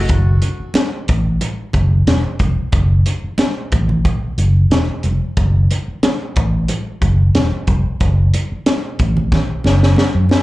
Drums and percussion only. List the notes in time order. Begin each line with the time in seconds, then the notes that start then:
0.09 kick, closed hi-hat, muted conga
0.42 closed hi-hat, muted conga
0.74 snare, closed hi-hat, high conga
1.08 kick, closed hi-hat
1.41 closed hi-hat, muted conga
1.73 kick, closed hi-hat, muted conga
2.07 snare, closed hi-hat, high conga
2.39 kick, closed hi-hat, high conga
2.72 kick, closed hi-hat, muted conga
3.06 closed hi-hat, muted conga
3.38 snare, closed hi-hat, high conga
3.72 kick, closed hi-hat
3.89 low conga
4.05 kick, closed hi-hat, muted conga
4.38 closed hi-hat, muted conga
4.71 snare, closed hi-hat, high conga
5.03 closed hi-hat, high conga
5.37 kick, closed hi-hat, muted conga
5.71 closed hi-hat, muted conga
6.03 snare, closed hi-hat, high conga
6.36 kick, closed hi-hat
6.68 closed hi-hat, muted conga
7.02 kick, closed hi-hat, muted conga
7.35 snare, closed hi-hat, high conga
7.67 kick, closed hi-hat, high conga
8.00 kick, closed hi-hat, muted conga
8.34 closed hi-hat, muted conga
8.66 snare, closed hi-hat, high conga
8.99 kick, closed hi-hat
9.17 low conga
9.32 kick, snare, muted conga, low conga
9.64 snare, muted conga
9.83 snare
9.96 snare, high conga
10.29 snare, high conga